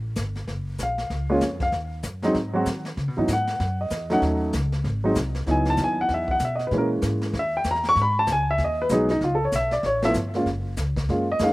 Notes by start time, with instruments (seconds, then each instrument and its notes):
Already playing: upright bass A1
0.16 upright bass G1, kick, snare, hi-hat pedal
0.36 snare
0.47 upright bass F#1, brush sweep, kick, snare
0.78 upright bass A#1, kick, snare, hi-hat pedal
0.83 upright piano F5
0.98 snare
1.10 upright bass C#2, brush sweep, kick, snare
1.30 upright piano G#3 A#3 C#4 F4 C#5
1.41 upright bass F2, kick, snare, hi-hat pedal
1.60 upright piano F5, kick, snare
1.72 upright bass D#2, brush sweep, kick, snare
2.03 upright bass F#2, kick, snare, hi-hat pedal
2.22 upright piano F#3 G#3 C4 D#4, snare
2.34 upright bass G#2, brush sweep, kick, snare
2.53 upright piano F#3 G#3 C4 F#4
2.65 upright bass D#3, kick, snare, hi-hat pedal
2.85 snare
2.97 upright bass C#3, brush sweep, kick, snare
3.08 upright bass B2
3.17 upright bass G#2, upright piano E3 F#3 B3 D#4
3.28 upright bass G#2, kick, snare, hi-hat pedal
3.33 upright piano F#5
3.47 snare
3.59 upright bass F#2, brush sweep, kick, snare
3.81 upright piano D#5
3.90 upright bass E2, kick, snare, hi-hat pedal
4.10 upright piano F#3 A3 C#4 D#4 F#5, snare
4.21 upright bass D#2, brush sweep, kick, snare
4.53 upright bass C#2, kick, snare, hi-hat pedal
4.72 snare
4.84 upright bass G#1, brush sweep, kick, snare
5.04 upright piano F#3 G#3 C4 D#4
5.15 upright bass C2, kick, snare, hi-hat pedal
5.35 snare
5.46 upright bass C#2, upright piano F#3 B3 D#4 E4, brush sweep, kick, snare
5.51 upright piano G#5
5.65 snare
5.70 upright piano A5
5.77 upright bass D#2, kick, snare, hi-hat pedal
5.84 upright piano G#5
6.01 upright piano F#5
6.09 upright bass E2, brush sweep, kick, snare
6.14 upright piano E5
6.28 upright piano F#5, kick
6.39 upright bass B2, kick, snare, hi-hat pedal
6.45 upright piano E5
6.55 upright piano D#5, snare
6.67 upright piano B4
6.71 upright bass A#2, upright piano E3 G#3 A#3 C#4, brush sweep, kick, snare
6.78 upright piano A#4
7.02 upright bass G#2, kick, snare, hi-hat pedal
7.22 snare
7.33 upright bass D#2, brush sweep, kick, snare
7.39 upright piano E5
7.57 upright piano G5
7.64 upright bass E2, kick, snare, hi-hat pedal
7.71 upright piano A#5
7.75 snare
7.84 snare
7.89 upright piano C#6
7.95 upright bass G#2, brush sweep, kick, snare
8.02 upright piano B5
8.19 upright piano A5
8.27 upright bass C#2, kick, snare, hi-hat pedal
8.32 upright piano G#5
8.51 upright piano E5
8.58 upright bass D#2, brush sweep, kick, snare
8.64 upright piano D#5
8.82 upright piano B4
8.89 upright bass B1, upright piano F#3 G#3 B3 D#4, kick, snare, hi-hat pedal
8.93 upright piano G#4
9.09 upright piano D#4, snare
9.21 upright bass C#2, upright piano F4, brush sweep, kick, snare
9.35 upright piano A4
9.45 upright piano C#5
9.52 upright bass B1, upright piano E5, kick, snare, hi-hat pedal
9.71 upright piano D5, snare
9.83 upright bass A1, upright piano C#5, brush sweep, kick, snare
10.02 upright piano F3 A3 B3 E4 E5, snare
10.14 upright bass G1, kick, snare, hi-hat pedal
10.34 upright piano G#3 A#3 C#4 F4, snare
10.46 upright bass F#1, brush sweep, kick, snare
10.77 upright bass C#2, kick, snare, hi-hat pedal
10.96 kick, snare
11.08 upright bass F#2, upright piano G#3 A#3 C#4 F4, brush sweep, kick, snare
11.32 upright piano D#5
11.39 upright bass F2, upright piano G#3 A#3 C#4 D#4, kick, snare, hi-hat pedal
11.44 upright piano F5